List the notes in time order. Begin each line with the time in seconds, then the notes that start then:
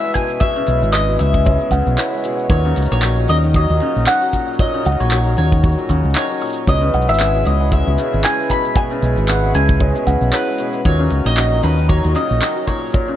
Already playing: C#3 E3 G#3 C#4 E4 B4 E5
0.04 G#3, shaker
0.14 B2 G#5, kick, open hi-hat, shaker
0.30 shaker
0.40 B2 E5, kick, shaker
0.56 C#3, shaker
0.67 B1 G#3, open hi-hat, shaker
0.82 G#1 E3, shaker
0.92 G#3 D#5 C#6, clap, shaker
1.08 B2, shaker
1.19 C#2 C#3 E5, open hi-hat, shaker
1.34 E3, kick, shaker
1.46 G#3 C#5, kick, shaker
1.60 B2, shaker
1.71 C#2 C#3 F#5, kick, open hi-hat, shaker
1.86 B1, shaker
1.98 E3 C#5, clap, shaker
2.13 G#3
2.24 B2, open hi-hat, shaker
2.39 shaker
2.50 D#2 A#2 F#3 D#4 A#4 C#5, kick, shaker
2.65 C#3, shaker
2.76 C#2 F#3, open hi-hat, shaker
2.82 shaker
2.85 shaker
2.91 A#1 D#3 C#5, shaker
3.02 F#3, clap, shaker
3.17 A#2, shaker
3.28 D#2 C#3 D#5, open hi-hat, shaker
3.43 D#3, shaker
3.54 F#3 D#5, kick, shaker
3.70 D#2 A#2, shaker
3.80 C#3, open hi-hat
3.96 A#1, shaker
3.98 shaker
4.00 shaker
4.04 D#3 F#5 C#6, clap, shaker
4.22 F#3, shaker
4.33 A#2, kick, shaker
4.48 shaker
4.54 shaker
4.59 A#2 C#5 D#5, kick, shaker
4.67 shaker
4.74 C#3, shaker
4.85 C#2 F#3 F#5, shaker
4.92 open hi-hat
5.00 A#1 D#3 C#5, shaker
5.11 F#3 C#5, clap, shaker
5.26 A#2, shaker
5.37 D#2 C#3 C#5, open hi-hat
5.52 D#3, kick, shaker
5.63 F#3, kick, shaker
5.68 shaker
5.72 shaker
5.78 A#2, shaker
5.89 D#2 C#3 C#6, kick, open hi-hat, shaker
6.04 C#2, shaker
6.10 shaker
6.15 D#3 C#5, clap, shaker
6.23 shaker
6.30 F#3, shaker
6.41 A#2 C#6, open hi-hat, shaker
6.45 shaker
6.49 shaker
6.53 shaker
6.57 shaker
6.67 C#2 B2 G#3 E4 B4 C#5 D#5, kick, shaker
6.81 C#3, shaker
6.93 B1 G#3 F#5, open hi-hat, shaker
7.01 shaker
7.08 G#1 E3 E5, shaker
7.14 shaker
7.19 G#3 C#5, clap, shaker
7.34 B2, shaker
7.46 C#2 C#3 D#5, open hi-hat, shaker
7.60 E3
7.72 G#3 E5, kick, shaker
7.86 C#2 B2, shaker
7.98 C#3, open hi-hat, shaker
8.13 G#1, shaker
8.24 E3 G#5, clap, shaker
8.39 G#3, shaker
8.50 B2 B5, kick, open hi-hat, shaker
8.65 shaker
8.76 B2 G#5, kick, shaker
8.91 C#3, shaker
9.02 B1 G#3, open hi-hat, shaker
9.17 G#1 E3, shaker
9.28 G#3 F#5 C#6, clap, shaker
9.43 B2, shaker
9.55 C#2 C#3 G#5, open hi-hat, shaker
9.69 E3, kick, shaker
9.80 G#3 C#5, kick
9.95 B2, shaker
10.06 C#2 C#3 F#5, kick, open hi-hat, shaker
10.21 B1, shaker
10.33 E3 B4 C#5, clap, shaker
10.48 G#3, shaker
10.50 shaker
10.53 shaker
10.56 open hi-hat, shaker
10.59 B2, shaker
10.73 shaker
10.85 D#2 A#2 F#3 C#4 D#4 A#4 C#5, kick, shaker
10.99 C#3
11.05 shaker
11.11 C#2 F#3, open hi-hat
11.25 A#1 D#3 D#5, shaker
11.37 F#3, clap, shaker
11.52 A#2, shaker
11.63 D#2 C#3 B4, open hi-hat, shaker
11.78 D#3, shaker
11.89 F#3 C#5, kick
12.04 D#2 A#2, shaker
12.15 C#3 D#5, open hi-hat, shaker
12.30 A#1, shaker
12.41 D#3 C#6, clap, shaker
12.56 F#3, shaker
12.67 A#2 C#5, kick, open hi-hat, shaker
12.83 shaker
12.86 shaker
12.91 A#2 C#5, kick, shaker
12.95 shaker
13.08 C#3